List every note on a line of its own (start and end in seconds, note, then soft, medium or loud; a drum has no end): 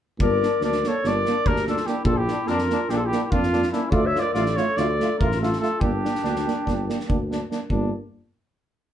0.19 0.43 G1 loud
0.19 0.29 A#3 medium
0.19 0.30 D4 soft
0.19 0.61 A#4 loud
0.19 0.60 D5 medium
0.19 kick medium
0.42 0.50 A#3 soft
0.42 0.51 D4 medium
0.42 snare soft
0.61 0.84 D2 medium
0.61 0.71 A#3 soft
0.61 0.72 D4 medium
0.61 0.89 D5 medium
0.61 snare soft
0.65 0.88 A#4 medium
0.72 snare soft
0.84 0.93 A#3 medium
0.84 0.94 D4 medium
0.84 1.09 A4 medium
0.84 1.09 C#5 medium
0.84 snare soft
1.04 1.27 G1 medium
1.04 1.14 A#3 medium
1.04 1.14 D4 medium
1.04 1.50 A#4 medium
1.04 1.49 D5 loud
1.04 snare soft
1.26 1.34 A#3 medium
1.26 1.37 D4 medium
1.26 snare soft
1.46 1.78 D2 medium
1.46 1.55 A#3 medium
1.46 1.57 D4 medium
1.46 1.69 G4 medium
1.46 1.67 A#4 medium
1.46 kick medium
1.56 snare soft
1.67 1.75 A#3 medium
1.67 1.76 D4 medium
1.67 1.90 F4 medium
1.67 1.87 A4 medium
1.67 snare soft
1.77 snare soft
1.86 1.95 A#3 medium
1.86 1.95 D4 medium
1.86 2.06 E4 medium
1.86 2.05 G4 medium
1.86 snare soft
2.05 2.28 A#1 loud
2.05 2.15 A#3 medium
2.05 2.16 D4 medium
2.05 2.19 F4 medium
2.05 2.19 A4 medium
2.05 kick medium
2.17 2.51 E4 medium
2.17 2.49 G4 medium
2.27 2.35 A#3 medium
2.27 2.37 D4 soft
2.27 snare soft
2.45 2.71 F2 medium
2.45 2.55 A#3 medium
2.45 2.93 F4 medium
2.45 2.91 A#4 medium
2.45 snare soft
2.50 2.59 D4 medium
2.59 snare soft
2.69 2.77 A#3 medium
2.69 2.80 D4 medium
2.69 snare soft
2.89 3.13 A#1 medium
2.89 2.99 A#3 medium
2.89 3.00 D4 medium
2.89 2.97 G4 medium
2.89 snare soft
2.96 3.08 F4 medium
2.96 3.07 A4 medium
3.06 3.25 E4 medium
3.06 3.24 G4 medium
3.12 3.21 A#3 medium
3.12 3.21 D4 medium
3.12 snare soft
3.24 3.34 E4 medium
3.24 3.33 G4 medium
3.31 3.66 F2 medium
3.31 3.41 A#3 medium
3.31 3.72 D4 medium
3.31 3.41 D4 medium
3.31 3.71 F4 medium
3.31 kick medium
3.43 snare soft
3.53 3.62 A#3 medium
3.53 3.61 D4 medium
3.53 snare soft
3.63 snare soft
3.72 3.81 A#3 medium
3.72 3.93 C#4 medium
3.72 3.80 D4 medium
3.72 3.93 E4 medium
3.72 snare soft
3.91 4.15 D2 loud
3.91 4.02 A3 medium
3.91 4.01 F4 medium
3.91 4.08 A4 medium
3.91 4.08 D5 medium
3.91 kick medium
4.06 4.24 C#5 medium
4.06 4.21 E5 medium
4.15 4.23 A3 soft
4.15 4.24 F4 medium
4.15 snare soft
4.19 4.36 A#4 medium
4.19 4.33 D5 loud
4.33 4.58 A1 medium
4.33 4.44 A3 medium
4.33 4.44 F4 medium
4.33 4.59 A4 medium
4.33 4.58 D5 medium
4.33 snare soft
4.46 snare soft
4.56 4.66 A3 medium
4.56 4.65 F4 medium
4.56 4.78 A4 medium
4.56 4.79 C#5 medium
4.56 snare soft
4.77 5.01 D2 medium
4.77 4.86 A3 medium
4.77 4.88 F4 medium
4.77 5.21 A4 medium
4.77 5.18 D5 medium
4.77 snare soft
5.00 5.08 A3 medium
5.00 5.10 F4 soft
5.00 snare soft
5.19 5.55 A1 medium
5.19 5.28 A3 medium
5.19 5.41 F4 medium
5.19 5.30 F4 medium
5.19 5.40 A#4 medium
5.19 kick medium
5.32 snare soft
5.41 5.49 A3 medium
5.41 5.50 F4 medium
5.41 5.61 F4 medium
5.41 5.59 A4 medium
5.41 snare soft
5.53 snare soft
5.59 5.68 A3 medium
5.59 5.69 F4 medium
5.59 5.84 F4 medium
5.59 5.82 A4 medium
5.59 snare soft
5.80 6.05 G1 medium
5.80 5.90 A#3 medium
5.80 5.90 D4 medium
5.80 7.32 D4 medium
5.80 7.31 G4 medium
5.80 kick medium
6.04 6.12 A#3 soft
6.04 6.12 D4 soft
6.04 snare soft
6.15 snare soft
6.23 6.47 D2 medium
6.23 6.32 A#3 soft
6.23 6.33 D4 medium
6.23 snare soft
6.36 snare soft
6.46 6.54 A#3 medium
6.46 6.54 D4 medium
6.46 snare soft
6.65 6.90 G1 medium
6.65 6.76 A#3 medium
6.65 6.75 D4 medium
6.65 kick soft
6.65 snare soft
6.89 6.97 A#3 medium
6.89 6.97 D4 soft
6.89 snare soft
7.00 snare soft
7.08 7.43 D2 medium
7.08 7.17 A#3 medium
7.08 7.17 D4 soft
7.08 kick medium
7.30 7.38 A#3 soft
7.30 7.39 D4 medium
7.30 snare soft
7.50 7.58 A#3 soft
7.50 7.59 D4 soft
7.50 snare soft
7.70 7.91 G1 medium
7.70 7.92 A#3 medium
7.70 7.91 D4 soft
7.70 kick medium